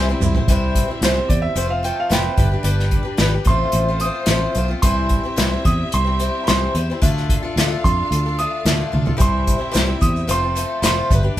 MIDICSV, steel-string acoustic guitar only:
0, 0, Header, 1, 2, 480
1, 0, Start_track
1, 0, Key_signature, 0, "major"
1, 0, Tempo, 544465
1, 423, Time_signature, 4, 2, 24, 8
1, 10049, End_track
2, 0, Start_track
2, 0, Title_t, "Steel-string acoustic guitar"
2, 0, Program_c, 0, 25
2, 74, Note_on_c, 0, 72, 60
2, 84, Note_on_c, 0, 64, 64
2, 89, Note_on_c, 0, 60, 52
2, 99, Note_on_c, 0, 55, 52
2, 183, Note_off_c, 0, 55, 0
2, 189, Note_off_c, 0, 60, 0
2, 189, Note_off_c, 0, 72, 0
2, 193, Note_on_c, 0, 55, 64
2, 194, Note_off_c, 0, 64, 0
2, 199, Note_on_c, 0, 60, 70
2, 207, Note_on_c, 0, 64, 75
2, 207, Note_on_c, 0, 72, 70
2, 302, Note_off_c, 0, 72, 0
2, 303, Note_off_c, 0, 64, 0
2, 308, Note_off_c, 0, 55, 0
2, 311, Note_off_c, 0, 60, 0
2, 312, Note_on_c, 0, 72, 61
2, 314, Note_on_c, 0, 64, 56
2, 326, Note_on_c, 0, 60, 54
2, 331, Note_on_c, 0, 55, 49
2, 425, Note_off_c, 0, 55, 0
2, 428, Note_off_c, 0, 64, 0
2, 428, Note_off_c, 0, 72, 0
2, 435, Note_off_c, 0, 60, 0
2, 435, Note_on_c, 0, 48, 76
2, 435, Note_on_c, 0, 52, 78
2, 436, Note_on_c, 0, 55, 80
2, 442, Note_on_c, 0, 64, 85
2, 444, Note_on_c, 0, 60, 85
2, 449, Note_on_c, 0, 72, 85
2, 767, Note_off_c, 0, 72, 0
2, 777, Note_on_c, 0, 72, 48
2, 783, Note_off_c, 0, 64, 0
2, 789, Note_off_c, 0, 48, 0
2, 789, Note_off_c, 0, 52, 0
2, 789, Note_off_c, 0, 55, 0
2, 793, Note_off_c, 0, 60, 0
2, 794, Note_on_c, 0, 64, 45
2, 802, Note_on_c, 0, 60, 44
2, 805, Note_on_c, 0, 55, 40
2, 900, Note_off_c, 0, 72, 0
2, 903, Note_off_c, 0, 55, 0
2, 904, Note_on_c, 0, 48, 78
2, 907, Note_off_c, 0, 60, 0
2, 908, Note_off_c, 0, 64, 0
2, 911, Note_on_c, 0, 52, 83
2, 914, Note_on_c, 0, 55, 78
2, 918, Note_on_c, 0, 60, 82
2, 919, Note_on_c, 0, 64, 80
2, 920, Note_on_c, 0, 72, 78
2, 1012, Note_off_c, 0, 72, 0
2, 1019, Note_off_c, 0, 64, 0
2, 1021, Note_off_c, 0, 60, 0
2, 1022, Note_on_c, 0, 72, 45
2, 1023, Note_off_c, 0, 48, 0
2, 1027, Note_off_c, 0, 52, 0
2, 1028, Note_off_c, 0, 55, 0
2, 1030, Note_on_c, 0, 64, 44
2, 1031, Note_on_c, 0, 60, 44
2, 1046, Note_on_c, 0, 55, 42
2, 1369, Note_off_c, 0, 55, 0
2, 1369, Note_off_c, 0, 60, 0
2, 1371, Note_on_c, 0, 53, 74
2, 1373, Note_on_c, 0, 57, 71
2, 1376, Note_off_c, 0, 72, 0
2, 1379, Note_on_c, 0, 60, 76
2, 1382, Note_off_c, 0, 64, 0
2, 1386, Note_on_c, 0, 65, 74
2, 1386, Note_on_c, 0, 72, 76
2, 1464, Note_off_c, 0, 72, 0
2, 1475, Note_on_c, 0, 72, 52
2, 1480, Note_off_c, 0, 65, 0
2, 1490, Note_on_c, 0, 65, 49
2, 1494, Note_off_c, 0, 60, 0
2, 1497, Note_off_c, 0, 53, 0
2, 1498, Note_off_c, 0, 57, 0
2, 1505, Note_on_c, 0, 60, 41
2, 1609, Note_off_c, 0, 72, 0
2, 1612, Note_on_c, 0, 57, 57
2, 1614, Note_off_c, 0, 60, 0
2, 1617, Note_off_c, 0, 65, 0
2, 1625, Note_on_c, 0, 60, 61
2, 1628, Note_on_c, 0, 65, 60
2, 1632, Note_on_c, 0, 72, 64
2, 1837, Note_off_c, 0, 57, 0
2, 1844, Note_off_c, 0, 60, 0
2, 1845, Note_off_c, 0, 65, 0
2, 1847, Note_on_c, 0, 57, 71
2, 1851, Note_on_c, 0, 53, 64
2, 1855, Note_off_c, 0, 72, 0
2, 1855, Note_on_c, 0, 60, 80
2, 1856, Note_on_c, 0, 65, 71
2, 1866, Note_on_c, 0, 72, 79
2, 2092, Note_off_c, 0, 57, 0
2, 2092, Note_off_c, 0, 60, 0
2, 2095, Note_on_c, 0, 55, 57
2, 2095, Note_on_c, 0, 62, 58
2, 2097, Note_off_c, 0, 53, 0
2, 2100, Note_off_c, 0, 65, 0
2, 2105, Note_off_c, 0, 72, 0
2, 2107, Note_on_c, 0, 67, 61
2, 2112, Note_on_c, 0, 71, 59
2, 2208, Note_off_c, 0, 71, 0
2, 2219, Note_off_c, 0, 55, 0
2, 2219, Note_off_c, 0, 62, 0
2, 2219, Note_on_c, 0, 71, 56
2, 2222, Note_off_c, 0, 67, 0
2, 2232, Note_on_c, 0, 67, 46
2, 2236, Note_on_c, 0, 62, 39
2, 2318, Note_off_c, 0, 62, 0
2, 2318, Note_on_c, 0, 55, 79
2, 2322, Note_off_c, 0, 67, 0
2, 2323, Note_off_c, 0, 71, 0
2, 2328, Note_on_c, 0, 62, 78
2, 2333, Note_on_c, 0, 67, 76
2, 2334, Note_on_c, 0, 71, 74
2, 2658, Note_off_c, 0, 71, 0
2, 2669, Note_on_c, 0, 71, 55
2, 2676, Note_off_c, 0, 67, 0
2, 2684, Note_off_c, 0, 62, 0
2, 2687, Note_on_c, 0, 67, 52
2, 2691, Note_off_c, 0, 55, 0
2, 2694, Note_on_c, 0, 62, 42
2, 2806, Note_off_c, 0, 71, 0
2, 2808, Note_on_c, 0, 55, 86
2, 2809, Note_off_c, 0, 62, 0
2, 2813, Note_off_c, 0, 67, 0
2, 2820, Note_on_c, 0, 62, 96
2, 2824, Note_on_c, 0, 67, 96
2, 2824, Note_on_c, 0, 71, 91
2, 2919, Note_off_c, 0, 71, 0
2, 2930, Note_on_c, 0, 71, 48
2, 2935, Note_off_c, 0, 67, 0
2, 2936, Note_off_c, 0, 55, 0
2, 2942, Note_off_c, 0, 62, 0
2, 2945, Note_on_c, 0, 67, 43
2, 2958, Note_on_c, 0, 62, 38
2, 3057, Note_off_c, 0, 71, 0
2, 3065, Note_off_c, 0, 67, 0
2, 3067, Note_on_c, 0, 45, 68
2, 3070, Note_on_c, 0, 53, 71
2, 3071, Note_off_c, 0, 62, 0
2, 3075, Note_on_c, 0, 57, 76
2, 3077, Note_on_c, 0, 60, 80
2, 3085, Note_on_c, 0, 65, 82
2, 3086, Note_on_c, 0, 72, 81
2, 3413, Note_off_c, 0, 72, 0
2, 3422, Note_off_c, 0, 65, 0
2, 3423, Note_off_c, 0, 60, 0
2, 3424, Note_on_c, 0, 72, 54
2, 3426, Note_off_c, 0, 45, 0
2, 3428, Note_off_c, 0, 53, 0
2, 3430, Note_off_c, 0, 57, 0
2, 3433, Note_on_c, 0, 60, 49
2, 3433, Note_on_c, 0, 65, 47
2, 3442, Note_on_c, 0, 57, 45
2, 3538, Note_off_c, 0, 57, 0
2, 3544, Note_off_c, 0, 72, 0
2, 3546, Note_off_c, 0, 60, 0
2, 3549, Note_off_c, 0, 65, 0
2, 3549, Note_on_c, 0, 57, 61
2, 3557, Note_on_c, 0, 60, 58
2, 3563, Note_on_c, 0, 65, 67
2, 3572, Note_on_c, 0, 72, 71
2, 3779, Note_off_c, 0, 60, 0
2, 3781, Note_off_c, 0, 57, 0
2, 3786, Note_off_c, 0, 65, 0
2, 3786, Note_on_c, 0, 45, 71
2, 3787, Note_off_c, 0, 72, 0
2, 3790, Note_on_c, 0, 60, 75
2, 3791, Note_on_c, 0, 53, 81
2, 3792, Note_on_c, 0, 57, 79
2, 3796, Note_on_c, 0, 65, 80
2, 3798, Note_on_c, 0, 72, 89
2, 4008, Note_off_c, 0, 57, 0
2, 4018, Note_on_c, 0, 57, 53
2, 4019, Note_off_c, 0, 60, 0
2, 4026, Note_off_c, 0, 45, 0
2, 4026, Note_off_c, 0, 65, 0
2, 4026, Note_off_c, 0, 72, 0
2, 4028, Note_off_c, 0, 53, 0
2, 4030, Note_on_c, 0, 60, 62
2, 4036, Note_on_c, 0, 65, 57
2, 4036, Note_on_c, 0, 72, 63
2, 4117, Note_off_c, 0, 72, 0
2, 4123, Note_off_c, 0, 65, 0
2, 4128, Note_on_c, 0, 72, 51
2, 4134, Note_on_c, 0, 65, 50
2, 4138, Note_off_c, 0, 60, 0
2, 4142, Note_off_c, 0, 57, 0
2, 4148, Note_on_c, 0, 60, 47
2, 4152, Note_on_c, 0, 57, 42
2, 4256, Note_on_c, 0, 48, 71
2, 4257, Note_off_c, 0, 72, 0
2, 4260, Note_off_c, 0, 60, 0
2, 4260, Note_off_c, 0, 65, 0
2, 4262, Note_on_c, 0, 52, 75
2, 4263, Note_off_c, 0, 57, 0
2, 4266, Note_on_c, 0, 55, 76
2, 4269, Note_on_c, 0, 64, 85
2, 4271, Note_on_c, 0, 60, 73
2, 4275, Note_on_c, 0, 72, 92
2, 4604, Note_off_c, 0, 72, 0
2, 4614, Note_on_c, 0, 72, 50
2, 4618, Note_off_c, 0, 64, 0
2, 4620, Note_off_c, 0, 60, 0
2, 4622, Note_off_c, 0, 48, 0
2, 4624, Note_off_c, 0, 52, 0
2, 4627, Note_off_c, 0, 55, 0
2, 4628, Note_on_c, 0, 64, 51
2, 4630, Note_on_c, 0, 60, 44
2, 4636, Note_on_c, 0, 55, 43
2, 4728, Note_off_c, 0, 55, 0
2, 4728, Note_off_c, 0, 60, 0
2, 4729, Note_on_c, 0, 48, 82
2, 4730, Note_off_c, 0, 64, 0
2, 4735, Note_off_c, 0, 72, 0
2, 4735, Note_on_c, 0, 52, 79
2, 4739, Note_on_c, 0, 55, 86
2, 4739, Note_on_c, 0, 60, 75
2, 4740, Note_on_c, 0, 64, 90
2, 4745, Note_on_c, 0, 72, 91
2, 4849, Note_off_c, 0, 72, 0
2, 4852, Note_off_c, 0, 64, 0
2, 4858, Note_off_c, 0, 48, 0
2, 4860, Note_on_c, 0, 72, 51
2, 4861, Note_off_c, 0, 52, 0
2, 4863, Note_off_c, 0, 55, 0
2, 4863, Note_off_c, 0, 60, 0
2, 4863, Note_on_c, 0, 64, 47
2, 4875, Note_on_c, 0, 60, 41
2, 4880, Note_on_c, 0, 55, 40
2, 5318, Note_off_c, 0, 72, 0
2, 5329, Note_on_c, 0, 72, 54
2, 5330, Note_off_c, 0, 64, 0
2, 5338, Note_off_c, 0, 60, 0
2, 5340, Note_off_c, 0, 55, 0
2, 5341, Note_on_c, 0, 64, 47
2, 5348, Note_on_c, 0, 60, 46
2, 5351, Note_on_c, 0, 55, 45
2, 5447, Note_off_c, 0, 55, 0
2, 5457, Note_off_c, 0, 60, 0
2, 5457, Note_on_c, 0, 55, 63
2, 5458, Note_off_c, 0, 72, 0
2, 5464, Note_off_c, 0, 64, 0
2, 5468, Note_on_c, 0, 60, 64
2, 5477, Note_on_c, 0, 64, 59
2, 5481, Note_on_c, 0, 72, 70
2, 5702, Note_off_c, 0, 55, 0
2, 5703, Note_on_c, 0, 48, 75
2, 5705, Note_off_c, 0, 60, 0
2, 5710, Note_off_c, 0, 64, 0
2, 5712, Note_off_c, 0, 72, 0
2, 5713, Note_on_c, 0, 52, 82
2, 5713, Note_on_c, 0, 55, 73
2, 5716, Note_on_c, 0, 60, 77
2, 5720, Note_on_c, 0, 64, 77
2, 5722, Note_on_c, 0, 72, 88
2, 5940, Note_off_c, 0, 55, 0
2, 5945, Note_off_c, 0, 48, 0
2, 5948, Note_off_c, 0, 60, 0
2, 5950, Note_off_c, 0, 52, 0
2, 5951, Note_on_c, 0, 55, 55
2, 5954, Note_off_c, 0, 64, 0
2, 5955, Note_off_c, 0, 72, 0
2, 5958, Note_on_c, 0, 60, 60
2, 5967, Note_on_c, 0, 64, 59
2, 5970, Note_on_c, 0, 72, 67
2, 6069, Note_off_c, 0, 55, 0
2, 6071, Note_off_c, 0, 72, 0
2, 6073, Note_off_c, 0, 60, 0
2, 6077, Note_off_c, 0, 64, 0
2, 6082, Note_on_c, 0, 72, 55
2, 6094, Note_on_c, 0, 60, 57
2, 6094, Note_on_c, 0, 64, 56
2, 6102, Note_on_c, 0, 55, 51
2, 6182, Note_off_c, 0, 60, 0
2, 6184, Note_off_c, 0, 55, 0
2, 6185, Note_on_c, 0, 50, 87
2, 6186, Note_on_c, 0, 62, 93
2, 6188, Note_on_c, 0, 57, 87
2, 6191, Note_off_c, 0, 64, 0
2, 6195, Note_off_c, 0, 72, 0
2, 6195, Note_on_c, 0, 65, 85
2, 6200, Note_on_c, 0, 69, 92
2, 6536, Note_off_c, 0, 69, 0
2, 6542, Note_off_c, 0, 65, 0
2, 6546, Note_off_c, 0, 50, 0
2, 6546, Note_on_c, 0, 69, 58
2, 6547, Note_off_c, 0, 62, 0
2, 6548, Note_off_c, 0, 57, 0
2, 6553, Note_on_c, 0, 65, 49
2, 6563, Note_on_c, 0, 62, 50
2, 6666, Note_off_c, 0, 62, 0
2, 6667, Note_off_c, 0, 69, 0
2, 6670, Note_off_c, 0, 65, 0
2, 6676, Note_on_c, 0, 62, 84
2, 6678, Note_on_c, 0, 50, 82
2, 6679, Note_on_c, 0, 57, 90
2, 6685, Note_on_c, 0, 65, 98
2, 6687, Note_on_c, 0, 69, 103
2, 6778, Note_off_c, 0, 69, 0
2, 6789, Note_on_c, 0, 69, 50
2, 6792, Note_off_c, 0, 62, 0
2, 6793, Note_off_c, 0, 50, 0
2, 6793, Note_off_c, 0, 57, 0
2, 6796, Note_off_c, 0, 65, 0
2, 6806, Note_on_c, 0, 62, 37
2, 6806, Note_on_c, 0, 65, 44
2, 7268, Note_off_c, 0, 69, 0
2, 7277, Note_off_c, 0, 62, 0
2, 7277, Note_off_c, 0, 65, 0
2, 7280, Note_on_c, 0, 69, 48
2, 7300, Note_on_c, 0, 65, 44
2, 7307, Note_on_c, 0, 62, 39
2, 7392, Note_off_c, 0, 62, 0
2, 7392, Note_off_c, 0, 65, 0
2, 7394, Note_off_c, 0, 69, 0
2, 7396, Note_on_c, 0, 57, 63
2, 7402, Note_on_c, 0, 62, 61
2, 7402, Note_on_c, 0, 65, 65
2, 7409, Note_on_c, 0, 69, 64
2, 7625, Note_off_c, 0, 57, 0
2, 7635, Note_off_c, 0, 62, 0
2, 7635, Note_off_c, 0, 65, 0
2, 7636, Note_on_c, 0, 50, 77
2, 7636, Note_on_c, 0, 57, 80
2, 7638, Note_off_c, 0, 69, 0
2, 7645, Note_on_c, 0, 62, 75
2, 7648, Note_on_c, 0, 65, 82
2, 7652, Note_on_c, 0, 69, 82
2, 7852, Note_off_c, 0, 57, 0
2, 7859, Note_off_c, 0, 62, 0
2, 7862, Note_off_c, 0, 65, 0
2, 7862, Note_on_c, 0, 57, 53
2, 7869, Note_on_c, 0, 62, 54
2, 7872, Note_off_c, 0, 50, 0
2, 7873, Note_off_c, 0, 69, 0
2, 7873, Note_on_c, 0, 65, 65
2, 7883, Note_on_c, 0, 69, 63
2, 7970, Note_off_c, 0, 69, 0
2, 7976, Note_off_c, 0, 65, 0
2, 7981, Note_on_c, 0, 69, 50
2, 7985, Note_off_c, 0, 57, 0
2, 7986, Note_off_c, 0, 62, 0
2, 7987, Note_on_c, 0, 65, 49
2, 7997, Note_on_c, 0, 62, 45
2, 8082, Note_on_c, 0, 48, 81
2, 8087, Note_off_c, 0, 62, 0
2, 8087, Note_off_c, 0, 65, 0
2, 8091, Note_on_c, 0, 52, 80
2, 8091, Note_on_c, 0, 55, 78
2, 8091, Note_on_c, 0, 60, 76
2, 8091, Note_on_c, 0, 64, 80
2, 8094, Note_off_c, 0, 69, 0
2, 8097, Note_on_c, 0, 72, 75
2, 8434, Note_off_c, 0, 72, 0
2, 8445, Note_off_c, 0, 64, 0
2, 8445, Note_on_c, 0, 72, 52
2, 8451, Note_off_c, 0, 60, 0
2, 8454, Note_off_c, 0, 48, 0
2, 8455, Note_on_c, 0, 64, 46
2, 8459, Note_off_c, 0, 52, 0
2, 8459, Note_off_c, 0, 55, 0
2, 8461, Note_on_c, 0, 60, 47
2, 8469, Note_on_c, 0, 55, 41
2, 8562, Note_off_c, 0, 55, 0
2, 8562, Note_off_c, 0, 60, 0
2, 8564, Note_on_c, 0, 52, 81
2, 8565, Note_on_c, 0, 48, 83
2, 8567, Note_off_c, 0, 64, 0
2, 8572, Note_off_c, 0, 72, 0
2, 8572, Note_on_c, 0, 55, 77
2, 8572, Note_on_c, 0, 60, 77
2, 8577, Note_on_c, 0, 64, 80
2, 8583, Note_on_c, 0, 72, 90
2, 8678, Note_off_c, 0, 72, 0
2, 8684, Note_off_c, 0, 64, 0
2, 8689, Note_on_c, 0, 72, 43
2, 8692, Note_off_c, 0, 60, 0
2, 8694, Note_on_c, 0, 64, 44
2, 8696, Note_off_c, 0, 48, 0
2, 8696, Note_off_c, 0, 52, 0
2, 8700, Note_off_c, 0, 55, 0
2, 8703, Note_on_c, 0, 60, 48
2, 8710, Note_on_c, 0, 55, 40
2, 9057, Note_off_c, 0, 72, 0
2, 9057, Note_on_c, 0, 53, 76
2, 9059, Note_off_c, 0, 55, 0
2, 9059, Note_off_c, 0, 60, 0
2, 9060, Note_off_c, 0, 64, 0
2, 9062, Note_on_c, 0, 57, 72
2, 9066, Note_on_c, 0, 65, 72
2, 9070, Note_on_c, 0, 60, 79
2, 9074, Note_on_c, 0, 72, 80
2, 9177, Note_off_c, 0, 72, 0
2, 9182, Note_off_c, 0, 53, 0
2, 9184, Note_off_c, 0, 57, 0
2, 9186, Note_off_c, 0, 65, 0
2, 9187, Note_on_c, 0, 72, 52
2, 9188, Note_off_c, 0, 60, 0
2, 9199, Note_on_c, 0, 65, 50
2, 9211, Note_on_c, 0, 60, 42
2, 9302, Note_off_c, 0, 60, 0
2, 9305, Note_on_c, 0, 57, 61
2, 9307, Note_off_c, 0, 65, 0
2, 9307, Note_off_c, 0, 72, 0
2, 9313, Note_on_c, 0, 60, 66
2, 9318, Note_on_c, 0, 65, 66
2, 9325, Note_on_c, 0, 72, 61
2, 9539, Note_off_c, 0, 57, 0
2, 9541, Note_on_c, 0, 53, 78
2, 9543, Note_off_c, 0, 60, 0
2, 9544, Note_off_c, 0, 65, 0
2, 9544, Note_off_c, 0, 72, 0
2, 9549, Note_on_c, 0, 57, 82
2, 9554, Note_on_c, 0, 60, 74
2, 9554, Note_on_c, 0, 65, 77
2, 9554, Note_on_c, 0, 72, 81
2, 9783, Note_off_c, 0, 53, 0
2, 9787, Note_off_c, 0, 57, 0
2, 9789, Note_off_c, 0, 60, 0
2, 9790, Note_off_c, 0, 65, 0
2, 9790, Note_off_c, 0, 72, 0
2, 9791, Note_on_c, 0, 55, 63
2, 9800, Note_on_c, 0, 62, 62
2, 9810, Note_on_c, 0, 67, 60
2, 9816, Note_on_c, 0, 71, 61
2, 9889, Note_off_c, 0, 71, 0
2, 9900, Note_on_c, 0, 71, 60
2, 9901, Note_off_c, 0, 67, 0
2, 9905, Note_off_c, 0, 62, 0
2, 9908, Note_off_c, 0, 55, 0
2, 9912, Note_on_c, 0, 67, 57
2, 9916, Note_on_c, 0, 62, 46
2, 10016, Note_off_c, 0, 62, 0
2, 10022, Note_off_c, 0, 71, 0
2, 10023, Note_off_c, 0, 67, 0
2, 10049, End_track
0, 0, End_of_file